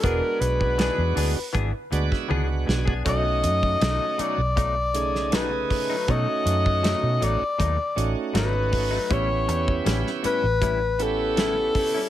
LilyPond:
<<
  \new Staff \with { instrumentName = "Tenor saxophone" } { \time 4/4 \key b \dorian \tempo 4 = 79 ais'8 b'4. r2 | dis''4. d''4. b'4 | dis''4. d''4 r8 b'4 | cis''4 r8 b'4 a'4. | }
  \new Staff \with { instrumentName = "Tonewheel organ" } { \time 4/4 \key b \dorian << { r2 r8 d''16 e''16 fis''8 gis''8 | r1 | r1 | r1 | } \\ { <gis b d' fis'>2 r8 <gis b d' fis'>4. | <a cis' dis' fis'>2 r8 <cis a dis' gis'>4. | <a cis' dis' fis'>2 r8 <a cis' dis' fis'>4. | <b cis' e' g'>2 r8 <b cis' e' g'>4. | } >> }
  \new Staff \with { instrumentName = "Clean electric guitar" } { \time 4/4 \key b \dorian <e b d' gis'>16 r8. <e b d' gis'>16 r16 <e b d' gis'>16 r16 <e b d' gis'>16 r8. <e b d' gis'>16 r8 <b d' gis'>16 | <b, fis a dis'>16 r8. <b, fis a dis'>16 r16 <b, fis a dis'>16 r16 <b, fis a dis'>16 r8. <b, fis a dis'>16 r8 <fis a dis'>16 | <b, fis a dis'>16 r8. <b, fis a dis'>16 r16 <b, fis a dis'>16 r16 <b, fis a dis'>16 r8. <b, fis a dis'>16 r8 <fis a dis'>16 | <a, g cis' e'>16 r8. <a, g cis' e'>16 r16 <a, g cis' e'>16 r16 <a, g cis' e'>16 r8. <a, g cis' e'>16 r8 <g cis' e'>16 | }
  \new Staff \with { instrumentName = "Fingered electric bass" } { \clef bass \time 4/4 \key b \dorian e,,16 r16 b,,8. e,16 d,16 r16 gis,,16 r16 d,16 r16 cis,8 b,,8 | b,,8 fis,8 b,,16 r8 b,,2 r16 | b,16 r16 fis,8. b,16 a,,16 r16 dis,16 r16 a,,16 r16 gis,,4 | a,,8 e,8 a,,16 r8 a,,2 r16 | }
  \new DrumStaff \with { instrumentName = "Drums" } \drummode { \time 4/4 <hh bd>8 hh16 bd16 <hh sn>8 hho8 <hh bd>8 hh16 <bd sn>16 tommh8 sn16 bd16 | <hh bd>8 hh16 bd16 <hh sn>8 hh8 <hh bd>8 hh16 sn16 <hh sn>8 <hho bd>8 | <hh bd>8 hh16 bd16 <hh sn>8 hh8 <hh bd>8 hh8 <hh sn>8 <hho bd>8 | <hh bd>8 hh16 bd16 <hh sn>16 sn16 hh8 <hh bd>8 hh8 <hh sn>8 <hho bd>8 | }
>>